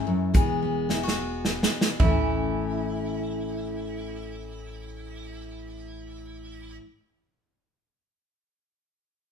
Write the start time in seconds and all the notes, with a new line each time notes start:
Already playing: C#4 E4
0.07 F#2
0.34 E1 E2 E3 G#3 B3 G#4, kick, closed hi-hat
0.62 B3
0.89 E3 E4, snare
1.03 F#4
1.08 snare
1.18 B3
1.45 E3, snare
1.63 snare
1.81 snare
2.00 A1 A2 E3 E4, kick, floor tom
2.04 A3 C#4
2.08 E4